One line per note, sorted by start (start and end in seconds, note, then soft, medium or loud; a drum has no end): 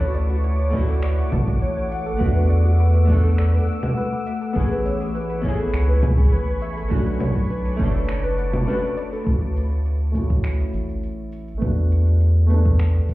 0.00 1.24 D2 loud
0.00 0.69 A3 medium
0.00 6.88 A3 medium
0.00 0.70 C#4 medium
0.00 0.71 E4 medium
0.00 0.72 F#4 medium
0.00 0.14 C#5 medium
0.00 4.52 F#5 medium
0.00 2.17 C#6 medium
0.00 4.52 D6 medium
0.14 0.29 D5 medium
0.14 shaker medium
0.29 0.43 F#4 medium
0.29 shaker soft
0.43 0.58 C#5 medium
0.43 shaker soft
0.59 0.67 C#5 medium
0.59 shaker soft
0.70 2.16 A3 loud
0.70 2.17 C#4 medium
0.70 0.82 D5 medium
0.70 kick medium
0.70 shaker medium
0.75 2.18 E4 medium
0.75 2.19 F#4 loud
0.88 1.02 A4 medium
0.88 shaker soft
1.03 1.17 D5 medium
1.03 finger snap medium
1.03 shaker soft
1.18 1.32 C#5 medium
1.18 shaker soft
1.32 2.13 A1 medium
1.32 1.47 A5 medium
1.32 kick loud
1.32 low conga medium
1.32 shaker medium
1.48 1.61 F#4 medium
1.48 kick loud
1.48 shaker soft
1.62 1.76 C#5 medium
1.62 shaker soft
1.77 1.85 C#5 medium
1.92 2.05 F#5 medium
1.92 shaker medium
2.06 2.19 A4 medium
2.06 shaker soft
2.17 3.60 E2 loud
2.17 3.04 A3 medium
2.17 3.05 B3 medium
2.17 2.35 F#4 loud
2.17 4.54 E6 medium
2.17 kick loud
2.17 shaker soft
2.22 3.06 D4 medium
2.22 3.07 F#4 medium
2.35 2.49 B4 medium
2.50 2.64 D5 medium
2.50 shaker medium
2.65 2.79 F#4 medium
2.65 shaker soft
2.79 2.93 B4 medium
2.79 shaker soft
2.94 3.02 B4 medium
2.94 shaker soft
3.05 4.51 A3 medium
3.05 4.52 B3 medium
3.05 3.17 D5 medium
3.05 kick medium
3.05 shaker medium
3.10 4.53 D4 medium
3.10 4.54 A4 medium
3.24 3.37 A4 medium
3.24 shaker soft
3.38 3.52 D5 medium
3.38 finger snap medium
3.38 shaker soft
3.53 3.67 B4 medium
3.53 shaker soft
3.68 3.82 F#5 medium
3.68 shaker medium
3.83 3.96 F#4 medium
3.83 low conga medium
3.83 shaker soft
3.97 4.12 B4 medium
3.97 shaker soft
4.13 4.20 B4 medium
4.27 4.40 E5 medium
4.27 shaker medium
4.41 4.54 A4 medium
4.41 shaker soft
4.53 5.66 A1 loud
4.53 5.39 B3 medium
4.53 5.40 C#4 medium
4.53 4.70 G#4 medium
4.53 6.89 G#5 medium
4.53 6.89 B5 medium
4.53 9.22 C#6 medium
4.53 kick loud
4.53 shaker soft
4.58 5.42 E4 medium
4.58 5.43 G#4 medium
4.71 4.85 B4 medium
4.85 5.00 C#5 medium
4.85 shaker medium
5.01 5.14 G#4 medium
5.01 shaker soft
5.15 5.28 B4 medium
5.15 shaker soft
5.30 5.37 B4 medium
5.30 shaker soft
5.42 6.87 B3 loud
5.42 6.88 C#4 medium
5.42 6.89 E4 medium
5.42 5.52 C#5 medium
5.42 kick medium
5.42 shaker medium
5.48 6.90 G#4 loud
5.59 5.72 A4 medium
5.59 shaker soft
5.73 6.33 C#2 medium
5.73 5.87 C#5 medium
5.73 finger snap medium
5.73 shaker soft
5.89 6.02 B4 medium
5.89 shaker soft
6.03 6.17 G#5 medium
6.03 kick loud
6.03 low conga medium
6.03 shaker medium
6.18 6.32 G#4 medium
6.18 kick loud
6.18 shaker soft
6.32 6.83 A1 medium
6.32 6.47 B4 medium
6.32 shaker soft
6.48 6.55 B4 medium
6.62 6.76 E5 medium
6.62 shaker medium
6.77 6.90 A4 medium
6.77 shaker soft
6.88 7.81 B1 loud
6.88 7.75 A3 medium
6.88 7.75 C#4 medium
6.88 7.76 D4 medium
6.88 7.06 F#4 loud
6.88 9.24 B4 medium
6.88 9.24 A5 medium
6.88 9.24 D6 medium
6.88 kick loud
6.88 shaker soft
6.95 7.78 F#4 medium
7.06 7.20 B4 medium
7.06 shaker soft
7.20 7.35 C#5 medium
7.20 low conga medium
7.20 shaker medium
7.36 7.49 F#4 medium
7.36 kick medium
7.36 shaker soft
7.50 7.64 B4 medium
7.50 shaker soft
7.65 7.73 B4 medium
7.65 shaker soft
7.77 8.68 F#1 medium
7.77 8.63 A3 loud
7.77 8.64 C#4 medium
7.77 7.88 C#5 medium
7.77 kick loud
7.77 shaker medium
7.81 8.66 D4 medium
7.81 8.67 A4 loud
7.94 8.07 A4 medium
7.94 shaker soft
8.09 8.23 C#5 medium
8.09 finger snap medium
8.09 shaker soft
8.24 8.37 B4 medium
8.24 shaker soft
8.38 8.53 F#5 medium
8.38 shaker medium
8.53 8.67 F#4 medium
8.53 low conga medium
8.53 shaker soft
8.67 9.23 A3 medium
8.67 9.23 C#4 medium
8.67 9.24 D4 medium
8.67 9.24 F#4 medium
8.67 8.81 B4 medium
8.67 shaker soft
8.83 8.90 B4 medium
8.97 9.11 D5 medium
8.97 shaker medium
9.12 9.25 A4 medium
9.12 shaker soft
9.24 10.66 D2 loud
9.24 10.10 A3 medium
9.24 10.11 C#4 medium
9.24 kick loud
9.24 shaker soft
9.28 10.12 E4 medium
9.28 10.13 F#4 medium
9.57 shaker medium
9.71 shaker soft
9.86 shaker soft
10.12 11.57 A3 medium
10.12 11.58 C#4 medium
10.12 kick medium
10.12 shaker medium
10.17 11.59 E4 medium
10.17 11.60 F#4 loud
10.30 kick loud
10.30 shaker soft
10.44 finger snap medium
10.44 shaker soft
10.60 shaker soft
10.73 11.54 A1 medium
10.73 shaker medium
10.89 shaker soft
11.03 shaker soft
11.32 shaker medium
11.48 shaker soft
11.58 12.45 A3 medium
11.58 12.46 B3 medium
11.62 13.01 E2 loud
11.62 12.47 D4 medium
11.62 12.48 F#4 medium
11.62 kick loud
11.62 shaker soft
11.92 shaker medium
12.07 shaker soft
12.21 shaker soft
12.47 13.14 A3 medium
12.47 13.14 B3 medium
12.47 shaker medium
12.51 13.14 D4 medium
12.51 13.14 A4 loud
12.66 kick loud
12.66 shaker soft
12.79 finger snap medium
12.79 shaker soft
12.95 shaker soft
13.09 kick medium
13.09 shaker medium